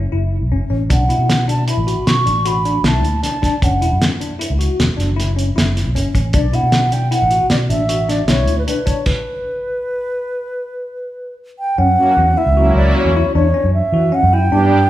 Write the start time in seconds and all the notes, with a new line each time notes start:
0.12 F#1 E4
0.41 B1
0.51 F#1 C#4
0.70 A1 C#4
0.90 B1 D4 F#5, kick, closed hi-hat
1.09 B2 E4, closed hi-hat
1.18 B2
1.30 snare, closed hi-hat
1.48 D4 A5, closed hi-hat
1.68 E4 B5, closed hi-hat
1.77 A1
1.87 F#4, closed hi-hat
2.07 B2 C#6, snare, closed hi-hat
2.26 A1 D4, closed hi-hat
2.45 F#4 B5, closed hi-hat
2.65 D4, closed hi-hat
2.84 B1 E4 A5, snare, closed hi-hat
3.02 D2, closed hi-hat
3.23 D4 A5, snare, closed hi-hat
3.42 D4, kick, snare, closed hi-hat
3.62 F#1 C#4 F#5, kick, closed hi-hat
3.82 E1 E4, closed hi-hat
3.92 F#2
4.02 snare, closed hi-hat
4.21 D4, closed hi-hat
4.39 E4, closed hi-hat
4.50 C#2
4.59 F#4, closed hi-hat
4.79 E1, snare, closed hi-hat
4.97 F#1 D4, snare, closed hi-hat
5.16 E4, snare, closed hi-hat
5.36 C#4, closed hi-hat
5.56 F#1 E4, snare, closed hi-hat
5.77 snare, closed hi-hat
5.86 B1
5.95 F#1 C#4, closed hi-hat
6.15 A1 C#4, kick, closed hi-hat
6.33 B1 D4 D5, kick, closed hi-hat
6.53 B2 E4 F#5, closed hi-hat
6.63 B2
6.72 snare, closed hi-hat
6.92 D4 G5, closed hi-hat
7.11 E4 F#5, closed hi-hat
7.22 A1
7.31 F#4, closed hi-hat
7.50 B2 D5, snare, closed hi-hat
7.69 A1 D4 E5, closed hi-hat
7.89 F#4, closed hi-hat
8.09 D4 D5, snare, closed hi-hat
8.28 B1 E4 C#5, snare, closed hi-hat
8.47 D2, closed hi-hat
8.58 B4
8.67 D4 B4, closed hi-hat
8.86 D4 C#5, kick, closed hi-hat
9.06 B4, kick, crash
11.59 G5
11.78 F#2 C#4 F#5
11.98 F#3 A#3 C#4 F#4
12.17 E2 C#4
12.37 E4 E5
12.46 C#2
12.57 F#3 A#3 C#4 E4 F#4
12.75 C#2 D5
12.96 F#4 C#5
13.05 E2
13.16 E4
13.35 E2 D4 C#5
13.54 C#4
13.64 F#2
13.74 E5
13.92 E3 F#4
14.12 C#4 F#5
14.23 F#2
14.33 E4 G5
14.52 G2 G3 B3 D4 G4